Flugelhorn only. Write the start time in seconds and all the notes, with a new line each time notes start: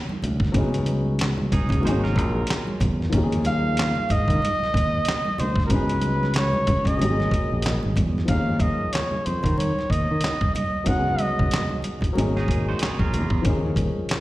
3.46 F5
4.11 D#5
5.40 C5
5.66 A#4
5.72 B4
6.36 C#5
6.87 D#5
8.29 F5
8.61 D#5
8.93 C#5
9.25 C5
9.58 C#5
9.91 D#5
10.55 D#5
10.88 F#5
11.21 D#5